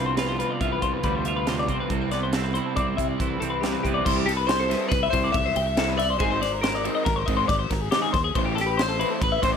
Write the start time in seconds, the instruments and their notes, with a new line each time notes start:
Already playing: fingered electric bass C2, overdriven electric guitar G2 D3 B3 F4, clean electric guitar C3 C4
0.00 overdriven electric guitar F3
0.06 clean electric guitar C5
0.17 overdriven electric guitar G2 D3 F3 B3 F4, clean electric guitar B4, snare, closed hi-hat
0.29 clean electric guitar C5
0.38 overdriven electric guitar F3 B3 F4, clean electric guitar B4, closed hi-hat
0.51 clean electric guitar D5
0.59 fingered electric bass C2, overdriven electric guitar D3 F3 B3 F4, clean electric guitar E5, kick, closed hi-hat
0.72 clean electric guitar B4
0.82 fingered electric bass C2, overdriven electric guitar G2 D3 F3 B3 F4, clean electric guitar C5, kick, closed hi-hat
0.93 clean electric guitar B4
1.03 fingered electric bass D2, overdriven electric guitar D3 F3 B3 F4, clean electric guitar G3 B4, kick, closed hi-hat
1.15 clean electric guitar C5
1.25 overdriven electric guitar F3 B3 F4, clean electric guitar E5, closed hi-hat
1.36 clean electric guitar B4
1.47 overdriven electric guitar G2 D3 F3 B3 F4, clean electric guitar C3 C5, snare, closed hi-hat
1.59 clean electric guitar D5
1.68 fingered electric bass C2, overdriven electric guitar F3 B3 F4, clean electric guitar C4 C5, kick, closed hi-hat
1.80 clean electric guitar B4
1.90 fingered electric bass C2, overdriven electric guitar C3 G3 C4 E4, clean electric guitar A4, kick, closed hi-hat
2.01 clean electric guitar B4
2.11 overdriven electric guitar G3 C4 E4, clean electric guitar B3 D5, snare, closed hi-hat
2.23 clean electric guitar C5
2.32 overdriven electric guitar C3 G3 C4 E4, clean electric guitar A4, snare, closed hi-hat
2.44 clean electric guitar B4
2.54 overdriven electric guitar G3 C4 E4, clean electric guitar C5, closed hi-hat
2.66 clean electric guitar A4
2.76 fingered electric bass C2, overdriven electric guitar C3 G3 C4 E4, clean electric guitar D5, kick, closed hi-hat
2.87 clean electric guitar C5
2.97 fingered electric bass C2, overdriven electric guitar C3 G3 C4 E4, clean electric guitar E5, kick, closed hi-hat
3.08 clean electric guitar D5
3.19 fingered electric bass C2, overdriven electric guitar C3 G3 C4 E4, clean electric guitar E3 C5, kick, closed hi-hat
3.29 clean electric guitar B4
3.40 fingered electric bass C2, overdriven electric guitar G3 C4 E4, clean electric guitar A4, closed hi-hat
3.50 clean electric guitar B4
3.61 overdriven electric guitar C3 G3 C4, clean electric guitar G4, snare, closed hi-hat
3.65 overdriven electric guitar E4
3.72 clean electric guitar B4
3.83 fingered electric bass C2, overdriven electric guitar G3 C4 E4, clean electric guitar B3 G4, kick, closed hi-hat
3.94 clean electric guitar D5
4.05 fingered electric bass C2, overdriven electric guitar C3 G3 C4 E4, clean electric guitar C5, kick, crash
4.16 clean electric guitar G4
4.26 clean electric guitar G4 A4, muted overdriven electric guitar stroke, snare, ride
4.37 clean electric guitar B4
4.48 clean electric guitar C5, muted overdriven electric guitar stroke, snare, ride
4.60 clean electric guitar A4
4.70 overdriven electric guitar C3 G3 C4 E4, clean electric guitar B4, snare, ride
4.80 clean electric guitar A4
4.91 fingered electric bass C2, clean electric guitar B4, muted overdriven electric guitar stroke, kick, snare, ride
5.03 clean electric guitar E5
5.13 fingered electric bass C2, overdriven electric guitar C3 G3 C4 E4, clean electric guitar C5, kick, ride
5.24 clean electric guitar D5
5.34 fingered electric bass C2, clean electric guitar E5, muted overdriven electric guitar stroke, kick, ride
5.46 clean electric guitar C5
5.55 fingered electric bass C2, clean electric guitar G5, muted overdriven electric guitar stroke, ride
5.67 clean electric guitar E5
5.77 overdriven electric guitar C3 G3 C4 E4, clean electric guitar A4, snare, ride
5.89 clean electric guitar B4
5.97 clean electric guitar D5 E5, muted overdriven electric guitar stroke, snare, ride
6.10 clean electric guitar C5
6.19 fingered electric bass G#1, overdriven electric guitar D#3 G#3 C4 D#4, clean electric guitar G#4 C5, kick, ride
6.31 clean electric guitar C5
6.42 clean electric guitar D5, muted overdriven electric guitar stroke, snare, ride
6.53 clean electric guitar A#4
6.61 clean electric guitar A#4 C5, muted overdriven electric guitar stroke, snare, ride
6.75 clean electric guitar D5
6.84 overdriven electric guitar D#3 G#3 C4 D#4, clean electric guitar D#5, ride
6.95 clean electric guitar D#5
7.05 fingered electric bass G#1, clean electric guitar A#4, muted overdriven electric guitar stroke, kick, snare, ride
7.16 clean electric guitar C5
7.26 fingered electric bass G#1, overdriven electric guitar D#3 G#3 C4 D#4, clean electric guitar D#5, kick, ride
7.37 clean electric guitar C5
7.48 fingered electric bass G#1, clean electric guitar D5, muted overdriven electric guitar stroke, kick, snare, ride
7.59 clean electric guitar C5
7.70 fingered electric bass G#1, clean electric guitar A#4, muted overdriven electric guitar stroke, kick, snare, ride
7.81 clean electric guitar G#4
7.91 overdriven electric guitar D#3 G#3 C4 D#4, clean electric guitar G4, snare, ride
8.02 clean electric guitar G#4
8.13 fingered electric bass D#2, clean electric guitar C5, muted overdriven electric guitar stroke, kick, snare, ride
8.24 clean electric guitar G#4
8.35 fingered electric bass A1, overdriven electric guitar E3 A3 C4 E4, clean electric guitar C5, kick, ride
8.45 clean electric guitar G4
8.56 clean electric guitar A4, muted overdriven electric guitar stroke, snare, ride
8.61 clean electric guitar G4
8.66 clean electric guitar B4
8.77 clean electric guitar C5, muted overdriven electric guitar stroke, snare, ride
8.82 clean electric guitar C5
8.89 clean electric guitar A4
9.00 overdriven electric guitar E3 A3 C4 E4, clean electric guitar B4, ride
9.11 clean electric guitar A4
9.21 fingered electric bass A1, clean electric guitar B4, muted overdriven electric guitar stroke, kick, ride
9.32 clean electric guitar E5
9.42 fingered electric bass A1, overdriven electric guitar E3 A3 C4 E4, clean electric guitar C5, kick, snare, ride
9.53 clean electric guitar D5